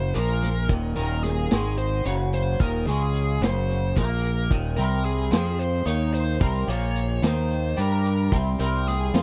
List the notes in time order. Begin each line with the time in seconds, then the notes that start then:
Already playing: F#1 F#2 C#3 F#3 C5
0.14 A#1 A#2 F3 A#3 A#4, closed hi-hat
0.42 snare, closed hi-hat
0.69 D#1 D#2 A#2 D#3, kick, closed hi-hat
0.96 D#1 D#2 A#2 D#3 A#4, closed hi-hat
1.24 G#4, snare, closed hi-hat
1.51 G#1 G#2 D#3 G#3, snare, closed hi-hat
1.77 C5, closed hi-hat
2.05 F#1 F#2 C#3 F#3 C#5, closed hi-hat
2.33 C5, closed hi-hat
2.59 D#1 D#2 A#2 D#3 A#4, kick, closed hi-hat
2.87 C#2 C#3 G#3 C#4 G#4, closed hi-hat
3.15 closed hi-hat
3.41 F#1 F#2 C#3 F#3 C5, snare, closed hi-hat
3.70 snare, closed hi-hat
3.97 A#1 A#2 F3 A#3 A#4, kick, snare, closed hi-hat
4.24 closed hi-hat
4.50 D#1 D#2 A#2 D#3, kick, closed hi-hat
4.76 C2 C3 G3 C4 A#4, closed hi-hat
5.05 G#4, closed hi-hat
5.31 F2 F3 C4 F4, snare, closed hi-hat
5.59 C5, closed hi-hat
5.86 D#2 D#3 A#3 D#4 C#5, closed hi-hat
6.14 C5, closed hi-hat
6.40 C2 C3 G3 C4 A#4, kick, closed hi-hat
6.68 A#1 A#2 F3 A#3 C#5, closed hi-hat
6.96 closed hi-hat
7.23 D#2 D#3 A#3 D#4 C5, snare, closed hi-hat
7.50 closed hi-hat
7.77 G2 G3 D4 G4 A#4, closed hi-hat
8.06 closed hi-hat
8.32 C2 C3 G3 C4, kick, closed hi-hat
8.59 C2 C3 G3 C4 A#4, closed hi-hat
8.88 G#4, snare, closed hi-hat
9.14 F2 F3 C4 F4, snare, closed hi-hat